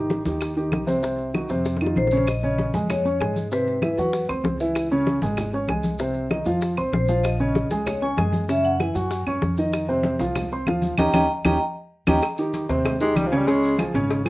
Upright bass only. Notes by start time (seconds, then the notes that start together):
Already playing: G#1
0.25 D#2
0.72 C2
1.50 F2
1.96 A#1
2.74 F2
3.21 G#2
3.97 E2
4.29 D2
4.44 C#2
5.22 G#1
5.68 C2
6.46 F2
6.77 C2
6.92 A#1
7.70 C#2
8.18 F#2
8.95 F#2
9.27 F#2
9.42 F2
10.20 C2
10.67 D#2
10.98 D#2
11.13 D#2
11.45 D#2
12.07 D#2
12.69 D#2
13.16 C#2
13.94 G#1